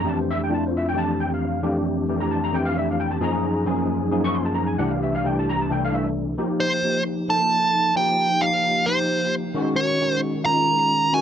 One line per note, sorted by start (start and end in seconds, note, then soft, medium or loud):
0.03 0.46 F2 medium
0.03 0.47 E3 medium
0.03 0.47 A3 medium
0.03 0.47 D4 medium
0.03 0.47 G4 medium
0.08 0.17 A5 medium
0.21 0.29 C5 medium
0.31 0.40 E5 loud
0.44 0.52 G5 medium
0.49 0.92 F2 medium
0.49 0.92 A3 medium
0.49 0.92 D4 medium
0.49 0.92 E4 medium
0.49 0.92 F4 medium
0.54 0.63 A5 medium
0.67 0.75 C5 medium
0.77 0.86 E5 medium
0.89 0.97 G5 medium
0.94 1.58 F2 medium
0.94 1.58 E3 medium
0.94 1.58 A3 medium
0.94 1.59 D4 medium
0.94 1.59 G4 medium
0.98 1.18 A5 loud
1.20 1.30 G5 medium
1.34 1.74 F5 medium
1.62 2.05 F2 medium
1.62 2.05 E3 medium
1.62 2.05 A3 medium
1.62 2.05 D4 medium
1.62 2.06 G4 medium
2.08 2.50 F2 medium
2.08 2.51 E3 medium
2.08 2.51 A3 medium
2.08 2.51 D4 medium
2.08 2.51 G4 medium
2.20 2.31 A#5 medium
2.31 2.42 A5 medium
2.44 2.54 A#5 loud
2.52 3.17 F2 medium
2.52 3.17 E3 medium
2.52 3.17 A3 medium
2.52 3.17 D4 medium
2.52 3.17 G4 medium
2.52 2.65 G5 medium
2.65 2.76 F5 loud
2.78 2.88 E5 medium
2.91 3.00 F5 medium
3.00 3.10 G5 medium
3.11 3.21 A5 medium
3.20 3.63 F#2 medium
3.20 3.63 F3 medium
3.20 3.63 A#3 medium
3.20 3.63 D#4 medium
3.20 3.64 G#4 medium
3.20 3.64 A#5 loud
3.65 4.08 F#2 medium
3.65 4.08 F3 medium
3.65 4.09 A#3 medium
3.65 4.09 D#4 medium
3.65 4.09 G#4 medium
4.11 4.75 F#2 medium
4.11 4.75 F3 medium
4.11 4.75 A#3 medium
4.11 4.75 D#4 medium
4.11 4.75 G#4 medium
4.24 4.34 C#6 loud
4.33 4.45 C6 medium
4.45 4.56 A5 medium
4.54 4.66 A#5 medium
4.67 4.78 G#5 medium
4.78 5.21 C2 medium
4.78 5.21 E3 medium
4.78 5.22 A3 medium
4.78 5.21 D4 medium
4.78 5.22 G4 medium
4.78 4.90 F#5 medium
4.90 5.01 F5 medium
5.03 5.13 E5 medium
5.15 5.25 F5 medium
5.24 5.66 C2 medium
5.24 5.66 E3 medium
5.24 5.67 A3 medium
5.24 5.67 D4 medium
5.24 5.67 G4 medium
5.24 5.36 G5 medium
5.39 5.48 A5 medium
5.49 5.59 A#5 loud
5.61 5.71 A5 medium
5.69 6.33 C2 medium
5.69 6.33 E3 medium
5.69 6.33 A3 medium
5.69 6.33 D4 medium
5.69 6.34 A4 medium
5.69 5.82 G5 medium
5.85 5.94 F5 loud
5.94 6.07 E5 medium
6.38 6.80 F3 medium
6.38 6.80 A#3 medium
6.38 6.80 D#4 medium
6.38 6.80 G4 medium
6.60 7.02 C5 medium
6.84 7.26 F3 medium
6.84 7.26 A#3 medium
6.84 7.26 D#4 medium
6.84 7.26 G4 medium
7.28 7.92 F3 medium
7.28 7.92 A#3 medium
7.28 7.92 D#4 medium
7.28 7.92 A4 medium
7.28 7.96 A5 medium
7.95 8.38 F3 medium
7.95 8.38 A#3 medium
7.95 8.39 D#4 medium
7.95 8.39 G4 medium
7.95 8.43 G5 medium
8.41 8.84 F3 medium
8.41 8.84 A#3 medium
8.41 8.84 D#4 medium
8.41 8.84 G4 medium
8.41 8.88 F5 medium
8.86 9.50 F3 medium
8.86 9.51 A#3 medium
8.86 9.51 D#4 medium
8.86 9.51 G4 medium
8.86 9.34 C5 medium
9.54 9.97 D#3 medium
9.54 9.97 G#3 medium
9.54 9.97 C#4 medium
9.54 9.98 F#4 medium
9.76 10.19 C#5 loud
10.00 10.43 D#3 medium
10.00 10.43 G#3 medium
10.00 10.43 C#4 soft
10.00 10.43 F#4 medium
10.44 11.09 D#3 medium
10.44 11.09 G#3 medium
10.44 11.09 C#4 medium
10.44 11.09 F4 medium
10.44 11.15 A#5 medium
11.12 11.21 D#3 medium
11.12 11.21 G#3 medium
11.12 11.21 C#4 medium
11.12 11.21 F#4 medium
11.12 11.21 G#5 medium